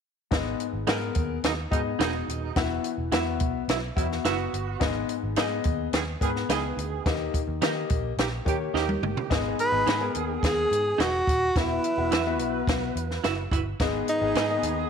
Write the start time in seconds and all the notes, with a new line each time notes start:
0.31 G#1 G#2 B3 G#4 D#5, kick, snare, closed hi-hat
0.60 closed hi-hat
0.73 G#1
0.87 G#2 B3 D#4 G#4 A#4 B4 D#5, snare, closed hi-hat
1.15 D#2, kick, closed hi-hat
1.44 D#2 B2 G#3 D#4, snare, closed hi-hat
1.71 G#2 B2 G#3 B3 D#4 G#4 D#5, kick, closed hi-hat
1.99 E1 B2 G#3 D#4 G#4 B4 D#5, snare, closed hi-hat
2.28 D#1, closed hi-hat
2.56 E1 E3 B3 F#4 E5, kick, snare, closed hi-hat
2.84 closed hi-hat
2.98 E1
3.12 E2 B3 E4 F#4 B4 E5, snare, closed hi-hat
3.40 B1, kick, closed hi-hat
3.68 B1 B2 F#3 E4, snare, closed hi-hat
3.96 E2 B2 F#3 B3 E4 F#4 E5, kick, closed hi-hat
4.12 snare
4.25 F#1 B3 E4 F#4 B4 E5, snare, closed hi-hat
4.53 G1, closed hi-hat
4.80 G#1 G#2 B3 G#4 D#5, kick, snare, closed hi-hat
5.09 closed hi-hat
5.23 G#1
5.36 G#2 B3 D#4 G#4 B4 D#5, snare, closed hi-hat
5.64 D#2, kick, closed hi-hat
5.93 D#2 D#3 B3 G#4, snare, closed hi-hat
6.21 G#2 D#3 B3 G#4 A#4, kick, closed hi-hat
6.28 B4
6.36 snare
6.49 C#2 D#3 B3 D#4 G#4 B4 D#5, snare, closed hi-hat
6.77 D2, closed hi-hat
7.06 D#2 D#3 A#3 G4 D#5, kick, snare, closed hi-hat
7.34 kick, closed hi-hat
7.48 D#2
7.62 D#3 A#3 D#4 G4 A#4 D#5, snare, closed hi-hat
7.90 A#1, kick, closed hi-hat
8.17 A#1 D#3 A#3 G4, snare, closed hi-hat
8.45 D#3 A#3 G4 C#5, kick, closed hi-hat
8.74 D#2 D#3 A#3 D#4 G4 A#4 D#5, snare
8.89 high tom
9.02 G1, mid tom
9.17 floor tom
9.30 G#1 G#2 D#3 B3 G#4 D#5, kick, snare, closed hi-hat
9.59 B4, closed hi-hat
9.72 G#1 B3 G#4 D#5
9.86 G#2 D#4 G#4 B4 D#5, snare, closed hi-hat
10.00 B3 G#4 A#4
10.15 D#2, closed hi-hat
10.43 D#2 G#4, kick, snare, closed hi-hat
10.71 G#2, closed hi-hat
10.98 E1 D#4 F#4 G#4 B4 D#5, snare, closed hi-hat
11.27 D#1, kick, closed hi-hat
11.55 E1 E3 F#3 B3 E4 F#4 B4 E5, kick, snare, closed hi-hat
11.84 closed hi-hat
11.98 E1 B3 F#4 E5
12.12 E2 E4 F#4 B4 E5, snare, closed hi-hat
12.27 B3 F#4 E5
12.39 B1, closed hi-hat
12.67 B1, kick, snare, closed hi-hat
12.96 E2, closed hi-hat
13.11 snare
13.24 F#1 E4 F#4 B4 E5, snare, closed hi-hat
13.51 G1 E4 F#4 B4 E5, kick, closed hi-hat
13.80 G#1 G#2 D#3 B3 G#4 D#5, kick, snare, closed hi-hat
14.08 D#4, closed hi-hat
14.21 G#1 B3 G#4 D#5
14.35 G#2 D#4 G#4 B4 D#5, snare, closed hi-hat
14.50 A#3 G#4 D#5
14.57 B3
14.63 D#2, closed hi-hat